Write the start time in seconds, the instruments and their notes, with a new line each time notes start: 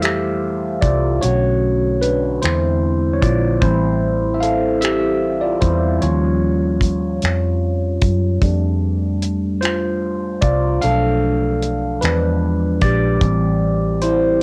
Already playing: fingered electric bass F2, tine electric piano E3 G3 A3 E4 A4 C5 F5
0.02 tine electric piano G4 E5, finger snap, closed hi-hat
0.81 fingered electric bass C2, tine electric piano F4 D5, kick, closed hi-hat
1.21 fingered electric bass B1, tine electric piano D3 A3 C#4 F#4 C#5, closed hi-hat
2.01 tine electric piano D4 B4, closed hi-hat
2.42 fingered electric bass E2, tine electric piano D3 G#3 C4 E4 C5, finger snap, closed hi-hat
3.13 tine electric piano C#5
3.21 fingered electric bass A#1, tine electric piano F4 D5, kick, closed hi-hat
3.61 fingered electric bass A1, tine electric piano E3 G3 C4 E4 C5, kick, closed hi-hat
4.34 tine electric piano E5
4.40 tine electric piano A4 F5, closed hi-hat
4.81 tine electric piano G4 E5, finger snap, closed hi-hat
5.41 tine electric piano F4 D5
5.61 fingered electric bass E2, tine electric piano E3 G3 C4 E4 C5, kick, closed hi-hat
6.02 fingered electric bass D#2, tine electric piano F3 G3 C#4 F4 C#5, closed hi-hat
6.81 kick, closed hi-hat
7.22 fingered electric bass F2, finger snap, closed hi-hat
8.02 fingered electric bass F#2, kick, closed hi-hat
8.42 fingered electric bass F2, tine electric piano G3 A3 D4, kick, closed hi-hat
9.22 closed hi-hat
9.61 tine electric piano F4 C5, closed hi-hat
9.65 finger snap
10.41 fingered electric bass C2, tine electric piano F4 D5, kick, closed hi-hat
10.81 fingered electric bass B1, tine electric piano F3 A3 D4 A4 F5, closed hi-hat
11.62 closed hi-hat
12.01 fingered electric bass E2, tine electric piano F3 G#3 D4 B4, closed hi-hat
12.05 finger snap
12.81 fingered electric bass A#1, tine electric piano G4 D5, kick, closed hi-hat
13.21 fingered electric bass A1, tine electric piano E3 G3 C4, kick, closed hi-hat
14.02 tine electric piano E4 C5, closed hi-hat